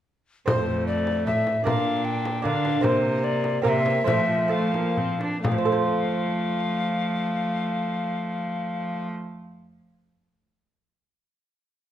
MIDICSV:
0, 0, Header, 1, 6, 480
1, 0, Start_track
1, 0, Key_signature, -1, "major"
1, 0, Tempo, 394218
1, 581, Time_signature, 3, 2, 24, 8
1, 3938, Tempo, 424929
1, 5378, Tempo, 465477
1, 6338, Tempo, 481541
1, 12788, End_track
2, 0, Start_track
2, 0, Title_t, "Recorder"
2, 0, Program_c, 0, 74
2, 585, Note_on_c, 0, 72, 78
2, 1030, Note_off_c, 0, 72, 0
2, 1061, Note_on_c, 0, 74, 80
2, 1531, Note_off_c, 0, 74, 0
2, 1542, Note_on_c, 0, 76, 71
2, 2010, Note_off_c, 0, 76, 0
2, 2019, Note_on_c, 0, 77, 83
2, 2490, Note_on_c, 0, 79, 86
2, 2509, Note_off_c, 0, 77, 0
2, 2971, Note_on_c, 0, 77, 85
2, 2989, Note_off_c, 0, 79, 0
2, 3445, Note_on_c, 0, 72, 84
2, 3463, Note_off_c, 0, 77, 0
2, 3944, Note_on_c, 0, 74, 86
2, 3961, Note_off_c, 0, 72, 0
2, 4388, Note_off_c, 0, 74, 0
2, 4395, Note_on_c, 0, 77, 73
2, 4446, Note_on_c, 0, 76, 79
2, 4457, Note_off_c, 0, 77, 0
2, 4868, Note_off_c, 0, 76, 0
2, 4877, Note_on_c, 0, 76, 92
2, 5380, Note_on_c, 0, 77, 71
2, 5395, Note_off_c, 0, 76, 0
2, 6091, Note_off_c, 0, 77, 0
2, 6328, Note_on_c, 0, 77, 69
2, 9968, Note_off_c, 0, 77, 0
2, 12788, End_track
3, 0, Start_track
3, 0, Title_t, "Lute"
3, 0, Program_c, 1, 24
3, 557, Note_on_c, 1, 60, 44
3, 569, Note_on_c, 1, 69, 45
3, 581, Note_on_c, 1, 41, 47
3, 1493, Note_off_c, 1, 41, 0
3, 1545, Note_on_c, 1, 45, 54
3, 1963, Note_off_c, 1, 60, 0
3, 1970, Note_off_c, 1, 69, 0
3, 1973, Note_off_c, 1, 45, 0
3, 1994, Note_on_c, 1, 62, 45
3, 2012, Note_on_c, 1, 70, 47
3, 2026, Note_on_c, 1, 46, 51
3, 2928, Note_off_c, 1, 46, 0
3, 2932, Note_off_c, 1, 62, 0
3, 2941, Note_off_c, 1, 70, 0
3, 2948, Note_on_c, 1, 62, 52
3, 2967, Note_on_c, 1, 70, 45
3, 2986, Note_on_c, 1, 50, 56
3, 3411, Note_off_c, 1, 50, 0
3, 3421, Note_on_c, 1, 60, 55
3, 3423, Note_off_c, 1, 70, 0
3, 3425, Note_off_c, 1, 62, 0
3, 3438, Note_on_c, 1, 70, 47
3, 3451, Note_on_c, 1, 48, 50
3, 4356, Note_off_c, 1, 48, 0
3, 4359, Note_off_c, 1, 60, 0
3, 4368, Note_off_c, 1, 70, 0
3, 4373, Note_on_c, 1, 60, 47
3, 4388, Note_on_c, 1, 70, 51
3, 4398, Note_on_c, 1, 48, 55
3, 4834, Note_off_c, 1, 48, 0
3, 4836, Note_off_c, 1, 60, 0
3, 4850, Note_on_c, 1, 60, 46
3, 4857, Note_off_c, 1, 70, 0
3, 4862, Note_on_c, 1, 69, 40
3, 4876, Note_on_c, 1, 53, 50
3, 5332, Note_off_c, 1, 60, 0
3, 5345, Note_on_c, 1, 60, 39
3, 5346, Note_off_c, 1, 69, 0
3, 5360, Note_on_c, 1, 69, 45
3, 6047, Note_off_c, 1, 53, 0
3, 6293, Note_off_c, 1, 60, 0
3, 6300, Note_off_c, 1, 69, 0
3, 6339, Note_on_c, 1, 41, 50
3, 6412, Note_on_c, 1, 53, 50
3, 6479, Note_on_c, 1, 60, 43
3, 6550, Note_on_c, 1, 69, 48
3, 6618, Note_on_c, 1, 72, 52
3, 10672, Note_off_c, 1, 41, 0
3, 10708, Note_off_c, 1, 53, 0
3, 10741, Note_off_c, 1, 60, 0
3, 10777, Note_off_c, 1, 69, 0
3, 10811, Note_off_c, 1, 72, 0
3, 12788, End_track
4, 0, Start_track
4, 0, Title_t, "Viola"
4, 0, Program_c, 2, 41
4, 595, Note_on_c, 2, 57, 59
4, 1977, Note_off_c, 2, 57, 0
4, 2015, Note_on_c, 2, 62, 54
4, 2952, Note_off_c, 2, 62, 0
4, 2976, Note_on_c, 2, 62, 60
4, 3454, Note_on_c, 2, 58, 57
4, 3472, Note_off_c, 2, 62, 0
4, 4392, Note_off_c, 2, 58, 0
4, 4399, Note_on_c, 2, 58, 64
4, 4870, Note_off_c, 2, 58, 0
4, 4885, Note_on_c, 2, 57, 52
4, 5371, Note_off_c, 2, 57, 0
4, 5387, Note_on_c, 2, 57, 67
4, 5600, Note_off_c, 2, 57, 0
4, 5624, Note_on_c, 2, 58, 50
4, 5859, Note_on_c, 2, 60, 58
4, 5875, Note_off_c, 2, 58, 0
4, 6093, Note_off_c, 2, 60, 0
4, 6099, Note_on_c, 2, 62, 54
4, 6337, Note_off_c, 2, 62, 0
4, 6344, Note_on_c, 2, 57, 55
4, 9976, Note_off_c, 2, 57, 0
4, 12788, End_track
5, 0, Start_track
5, 0, Title_t, "Cello"
5, 0, Program_c, 3, 42
5, 590, Note_on_c, 3, 41, 55
5, 1550, Note_on_c, 3, 45, 51
5, 1568, Note_off_c, 3, 41, 0
5, 2024, Note_on_c, 3, 46, 59
5, 2042, Note_off_c, 3, 45, 0
5, 2981, Note_on_c, 3, 50, 61
5, 2999, Note_off_c, 3, 46, 0
5, 3449, Note_off_c, 3, 50, 0
5, 3457, Note_on_c, 3, 48, 66
5, 4386, Note_off_c, 3, 48, 0
5, 4410, Note_on_c, 3, 48, 65
5, 4876, Note_off_c, 3, 48, 0
5, 4885, Note_on_c, 3, 53, 60
5, 6069, Note_off_c, 3, 53, 0
5, 6345, Note_on_c, 3, 53, 55
5, 9977, Note_off_c, 3, 53, 0
5, 12788, End_track
6, 0, Start_track
6, 0, Title_t, "Frame drum"
6, 579, Note_on_c, 9, 64, 84
6, 701, Note_off_c, 9, 64, 0
6, 1304, Note_on_c, 9, 64, 45
6, 1426, Note_off_c, 9, 64, 0
6, 1545, Note_on_c, 9, 64, 53
6, 1667, Note_off_c, 9, 64, 0
6, 1789, Note_on_c, 9, 64, 47
6, 1910, Note_off_c, 9, 64, 0
6, 2029, Note_on_c, 9, 64, 77
6, 2151, Note_off_c, 9, 64, 0
6, 2745, Note_on_c, 9, 64, 50
6, 2867, Note_off_c, 9, 64, 0
6, 2985, Note_on_c, 9, 64, 47
6, 3107, Note_off_c, 9, 64, 0
6, 3226, Note_on_c, 9, 64, 51
6, 3348, Note_off_c, 9, 64, 0
6, 3458, Note_on_c, 9, 64, 73
6, 3580, Note_off_c, 9, 64, 0
6, 4172, Note_on_c, 9, 64, 48
6, 4285, Note_off_c, 9, 64, 0
6, 4404, Note_on_c, 9, 64, 47
6, 4517, Note_off_c, 9, 64, 0
6, 4645, Note_on_c, 9, 64, 51
6, 4758, Note_off_c, 9, 64, 0
6, 4888, Note_on_c, 9, 64, 79
6, 5000, Note_off_c, 9, 64, 0
6, 5619, Note_on_c, 9, 64, 46
6, 5722, Note_off_c, 9, 64, 0
6, 5857, Note_on_c, 9, 64, 47
6, 5960, Note_off_c, 9, 64, 0
6, 6099, Note_on_c, 9, 64, 47
6, 6202, Note_off_c, 9, 64, 0
6, 6343, Note_on_c, 9, 64, 80
6, 6442, Note_off_c, 9, 64, 0
6, 12788, End_track
0, 0, End_of_file